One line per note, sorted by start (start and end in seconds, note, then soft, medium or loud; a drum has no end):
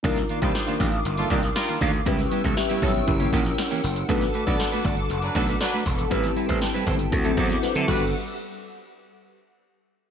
0.03 0.23 C2 loud
0.03 0.17 D#3 medium
0.03 0.18 A#3 medium
0.03 2.02 D4 medium
0.03 0.18 D4 medium
0.03 2.02 D#4 medium
0.03 2.03 F4 medium
0.03 0.18 F4 medium
0.03 2.05 A#4 medium
0.03 2.03 A#4 medium
0.03 2.04 F5 medium
0.03 2.05 D6 medium
0.03 2.04 D#6 medium
0.03 kick medium
0.03 closed hi-hat medium
0.17 snare soft
0.17 closed hi-hat soft
0.29 0.40 D#3 medium
0.29 0.40 A#3 medium
0.29 0.40 D4 medium
0.29 0.41 F4 medium
0.29 closed hi-hat medium
0.42 0.51 C2 medium
0.42 0.53 D#3 medium
0.42 0.78 G3 medium
0.42 0.53 A#3 medium
0.42 0.53 D4 medium
0.42 0.78 F4 medium
0.42 0.52 G4 medium
0.42 0.78 C5 medium
0.42 kick medium
0.42 closed hi-hat soft
0.55 snare medium
0.55 closed hi-hat medium
0.67 0.79 D#3 medium
0.67 0.79 A#3 medium
0.67 0.79 D4 medium
0.67 0.81 F4 medium
0.67 closed hi-hat soft
0.80 0.99 A1 medium
0.80 0.90 D#3 medium
0.80 0.91 A#3 medium
0.80 0.91 D4 medium
0.80 0.91 G4 medium
0.80 kick medium
0.80 open hi-hat medium
0.92 muted clean electric guitar stroke medium
0.92 closed hi-hat soft
1.05 1.24 G1 medium
1.05 muted clean electric guitar stroke soft
1.05 closed hi-hat medium
1.17 1.29 D#3 soft
1.17 1.28 A3 medium
1.17 1.29 A#3 medium
1.17 1.29 D4 medium
1.17 1.28 F4 medium
1.17 1.28 A4 medium
1.17 closed hi-hat soft
1.30 1.49 C2 medium
1.30 1.44 D#3 medium
1.30 1.41 D#3 medium
1.30 1.43 A#3 medium
1.30 1.41 D4 medium
1.30 1.43 D4 medium
1.30 1.42 F4 medium
1.30 1.41 G4 medium
1.30 kick medium
1.30 closed hi-hat medium
1.43 muted clean electric guitar stroke soft
1.43 snare soft
1.43 closed hi-hat soft
1.56 1.76 G3 medium
1.56 1.76 F4 medium
1.56 1.76 A#4 loud
1.56 muted clean electric guitar stroke soft
1.56 snare loud
1.56 closed hi-hat medium
1.68 1.79 D#3 soft
1.68 1.79 A#3 soft
1.68 1.79 D4 medium
1.68 1.79 F4 medium
1.68 closed hi-hat medium
1.80 2.00 D2 medium
1.80 1.94 D#3 medium
1.80 1.94 A#3 medium
1.80 1.93 D4 medium
1.80 1.93 F4 medium
1.80 kick medium
1.80 open hi-hat medium
1.94 muted clean electric guitar stroke soft
1.94 closed hi-hat medium
2.05 2.25 C#2 medium
2.05 2.19 G3 medium
2.05 2.20 B3 medium
2.05 3.05 C#4 medium
2.05 2.56 E4 medium
2.05 2.20 E4 medium
2.05 2.20 G4 medium
2.05 2.56 G4 medium
2.05 3.07 B4 medium
2.05 2.57 B4 medium
2.05 4.07 G5 medium
2.05 3.07 C#6 medium
2.05 4.07 E6 medium
2.05 kick loud
2.05 closed hi-hat loud
2.19 snare soft
2.19 closed hi-hat soft
2.31 2.42 G3 medium
2.31 2.42 B3 medium
2.31 2.43 E4 medium
2.31 2.43 G4 medium
2.31 closed hi-hat medium
2.44 2.54 C#2 loud
2.44 2.55 G3 soft
2.44 2.55 B3 medium
2.44 2.55 E4 medium
2.44 2.55 A4 medium
2.44 kick medium
2.44 closed hi-hat soft
2.57 2.81 G4 medium
2.57 2.81 E5 medium
2.57 muted clean electric guitar stroke soft
2.57 snare medium
2.57 closed hi-hat medium
2.69 2.81 G3 medium
2.69 2.82 B3 medium
2.69 2.82 E4 medium
2.69 2.83 G4 medium
2.69 closed hi-hat soft
2.82 3.01 B1 medium
2.82 2.93 G3 medium
2.82 2.93 B3 medium
2.82 2.93 E4 medium
2.82 3.06 E4 medium
2.82 2.93 A4 medium
2.82 3.31 C#5 medium
2.82 kick medium
2.82 open hi-hat medium
2.94 closed hi-hat medium
3.06 3.26 F#1 loud
3.06 4.06 C#4 medium
3.06 4.07 E4 medium
3.06 4.07 G4 medium
3.06 4.08 A#4 medium
3.06 4.07 A#4 medium
3.06 6.09 F#5 medium
3.06 muted clean electric guitar stroke soft
3.06 kick medium
3.06 closed hi-hat medium
3.20 3.31 E3 medium
3.20 3.31 A#3 medium
3.20 3.31 C#4 medium
3.20 3.30 G4 medium
3.20 closed hi-hat soft
3.32 3.51 A#1 medium
3.32 3.46 E3 medium
3.32 3.45 A#3 medium
3.32 3.44 C#4 medium
3.32 3.44 G4 loud
3.32 kick medium
3.32 closed hi-hat medium
3.45 muted clean electric guitar stroke soft
3.45 snare soft
3.45 closed hi-hat soft
3.58 muted clean electric guitar stroke soft
3.58 snare loud
3.58 closed hi-hat medium
3.71 3.82 E3 medium
3.71 3.82 A#3 medium
3.71 3.83 C#4 medium
3.71 3.83 G4 medium
3.71 closed hi-hat medium
3.84 4.02 F#1 medium
3.84 open hi-hat medium
3.96 muted clean electric guitar stroke medium
3.96 closed hi-hat medium
4.08 4.28 B1 loud
4.08 4.22 A3 medium
4.08 6.07 D4 medium
4.08 4.22 D4 medium
4.08 6.07 F#4 medium
4.08 4.23 F#4 medium
4.08 7.09 A4 medium
4.08 6.07 A4 medium
4.08 6.08 B4 medium
4.08 4.23 B4 loud
4.08 6.09 A5 medium
4.08 6.09 D6 medium
4.08 kick loud
4.08 closed hi-hat loud
4.21 snare soft
4.21 closed hi-hat soft
4.34 4.45 A3 medium
4.34 4.45 D4 medium
4.34 4.45 F#4 medium
4.34 4.45 B4 medium
4.34 closed hi-hat medium
4.46 4.56 B1 medium
4.46 4.58 A3 soft
4.46 4.82 B3 medium
4.46 4.58 D4 medium
4.46 4.58 F#4 medium
4.46 4.82 A4 medium
4.46 4.82 D5 medium
4.46 4.57 D5 medium
4.46 kick medium
4.46 closed hi-hat soft
4.59 muted clean electric guitar stroke soft
4.59 snare loud
4.59 closed hi-hat medium
4.72 4.83 A3 medium
4.72 4.84 D4 medium
4.72 4.84 F#4 medium
4.72 4.86 B4 medium
4.72 closed hi-hat soft
4.84 5.03 G1 medium
4.84 4.95 A3 medium
4.84 4.95 D4 medium
4.84 4.96 F#4 medium
4.84 4.96 D5 medium
4.84 kick medium
4.84 open hi-hat medium
4.97 muted clean electric guitar stroke soft
4.97 closed hi-hat medium
5.10 5.29 F#1 medium
5.10 muted clean electric guitar stroke soft
5.10 closed hi-hat medium
5.22 5.33 F#3 medium
5.22 5.33 D4 medium
5.22 5.33 B4 medium
5.22 muted clean electric guitar stroke soft
5.22 closed hi-hat soft
5.35 5.54 B1 medium
5.35 5.46 F#3 medium
5.35 5.48 A3 medium
5.35 5.48 D4 medium
5.35 5.46 D4 medium
5.35 5.48 F#4 medium
5.35 5.46 A4 medium
5.35 5.47 B4 medium
5.35 kick medium
5.35 closed hi-hat medium
5.48 5.59 A3 soft
5.48 5.59 D4 medium
5.48 5.59 F#4 medium
5.48 5.59 B4 medium
5.48 snare soft
5.48 closed hi-hat soft
5.61 5.81 F#3 medium
5.61 5.81 D4 loud
5.61 5.81 B4 loud
5.61 muted clean electric guitar stroke soft
5.61 snare loud
5.61 closed hi-hat medium
5.73 5.85 A3 medium
5.73 5.85 D4 medium
5.73 5.85 F#4 medium
5.73 5.85 B4 medium
5.73 closed hi-hat medium
5.86 6.05 E1 medium
5.86 kick medium
5.86 open hi-hat medium
5.98 muted clean electric guitar stroke soft
5.98 closed hi-hat medium
6.10 6.30 A1 loud
6.10 6.24 G3 medium
6.10 7.10 C4 medium
6.10 6.25 C4 medium
6.10 7.10 E4 medium
6.10 6.25 E4 medium
6.10 7.10 G4 medium
6.10 6.25 B4 medium
6.10 7.11 B4 medium
6.10 7.12 G5 medium
6.10 7.12 A5 medium
6.10 kick loud
6.10 closed hi-hat loud
6.24 snare soft
6.24 closed hi-hat soft
6.36 6.47 G3 medium
6.36 6.47 C4 medium
6.36 6.47 E4 medium
6.36 6.47 B4 medium
6.36 closed hi-hat medium
6.49 6.59 A1 loud
6.49 6.60 G3 soft
6.49 6.60 C4 medium
6.49 6.60 E4 medium
6.49 6.59 C5 medium
6.49 kick medium
6.49 closed hi-hat soft
6.62 snare medium
6.62 closed hi-hat medium
6.74 6.85 G3 medium
6.74 6.86 C4 medium
6.74 6.86 E4 medium
6.74 6.87 B4 medium
6.74 closed hi-hat medium
6.86 7.06 G1 loud
6.86 6.97 G3 medium
6.86 6.98 C4 medium
6.86 6.98 E4 medium
6.86 6.98 C5 medium
6.86 kick medium
6.86 open hi-hat medium
6.99 muted clean electric guitar stroke soft
6.99 closed hi-hat medium
7.11 7.31 D2 loud
7.11 7.61 C4 medium
7.11 7.62 E4 medium
7.11 7.62 F#4 medium
7.11 7.62 A4 medium
7.11 7.87 C5 medium
7.11 7.88 E5 medium
7.11 7.87 F#5 medium
7.11 7.88 D6 medium
7.11 muted clean electric guitar stroke soft
7.11 kick medium
7.11 closed hi-hat medium
7.25 7.36 F#3 medium
7.25 7.36 C4 medium
7.25 7.36 E4 medium
7.25 7.35 A4 medium
7.25 closed hi-hat soft
7.37 7.56 E2 medium
7.37 7.51 F#3 medium
7.37 7.50 C4 medium
7.37 7.49 E4 loud
7.37 7.49 A4 loud
7.37 kick medium
7.37 closed hi-hat medium
7.49 muted clean electric guitar stroke soft
7.49 snare soft
7.49 closed hi-hat medium
7.63 7.87 D4 medium
7.63 7.87 B4 medium
7.63 muted clean electric guitar stroke soft
7.63 snare medium
7.63 closed hi-hat medium
7.75 7.85 D3 medium
7.75 7.87 F#3 medium
7.75 7.88 C4 medium
7.75 7.89 E4 medium
7.75 7.88 A4 medium
7.75 closed hi-hat medium
7.88 8.12 G1 medium
7.88 8.11 G3 medium
7.88 8.03 G3 medium
7.88 8.06 G3 medium
7.88 8.12 B3 medium
7.88 8.12 D4 medium
7.88 8.04 D4 medium
7.88 8.06 F#4 medium
7.88 8.12 F#4 medium
7.88 8.04 F#4 medium
7.88 8.12 G4 medium
7.88 8.11 A4 medium
7.88 8.12 A4 medium
7.88 8.11 B4 medium
7.88 8.06 B4 medium
7.88 8.04 B4 medium
7.88 8.12 F#5 medium
7.88 kick loud
7.88 crash medium